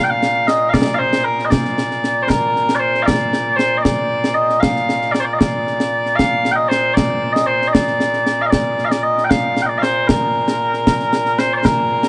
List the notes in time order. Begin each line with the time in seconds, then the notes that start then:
Already playing: A#2
0.04 G5
0.10 F5
0.23 snare
0.47 D#5, snare
0.69 D5 F5
0.74 concert bass drum, snare
0.94 F5
0.99 C5
1.13 snare
1.24 A#4
1.39 snare
1.45 D#5
1.50 D5, concert bass drum, snare
1.65 snare
1.78 snare
1.91 snare
2.04 snare
2.23 C5
2.28 A#4, concert bass drum, snare
2.56 snare
2.69 snare
2.75 D5
2.79 C5
2.95 snare
3.03 D5 F5
3.08 concert bass drum, snare
3.33 snare
3.56 C5, snare
3.77 D#5
3.82 D5, concert bass drum, snare
4.24 snare
4.34 D#5
4.50 snare
4.60 F5, concert bass drum, snare
4.76 snare
4.89 snare
5.02 snare
5.12 D5, snare
5.20 C5
5.24 D5
5.33 D#5
5.39 D5, concert bass drum, snare
5.67 snare
5.80 snare
6.06 snare
6.16 F5, concert bass drum, snare
6.45 snare
6.52 D#5 G5
6.69 C5, snare
6.94 D5, concert bass drum, snare
7.33 D#5, snare
7.46 C5
7.62 snare
7.68 D#5
7.73 D5, concert bass drum, snare
7.87 snare
8.00 snare
8.13 snare
8.27 snare
8.42 F5
8.46 D#5
8.50 D5, concert bass drum, snare
8.78 snare
8.85 F5
8.89 D5, snare
9.03 D#5
9.18 snare
9.24 G5
9.30 F5, concert bass drum, snare
9.57 snare
9.62 D#5 G5
9.69 D5
9.78 C5 F5
9.83 snare
10.07 A#4, concert bass drum, snare
10.48 snare
10.74 snare
10.87 concert bass drum, snare
11.00 snare
11.13 snare
11.26 snare
11.39 C5, snare
11.53 C5 D5
11.65 A#4, concert bass drum, snare
12.03 snare